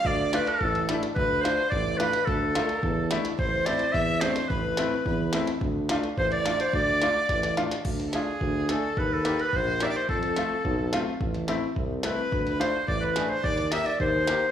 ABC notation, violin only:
X:1
M:2/4
L:1/16
Q:1/4=108
K:none
V:1 name="Violin"
d3 A3 z2 | B2 c2 d2 B2 | A6 z2 | c4 e2 c2 |
B4 B2 z2 | z4 c d3 | d6 z2 | z3/2 A/2 ^G4 A2 |
B4 c2 d/2 d/2 c | A6 z2 | z6 B2- | B B c2 d B2 c |
d2 e2 c4 |]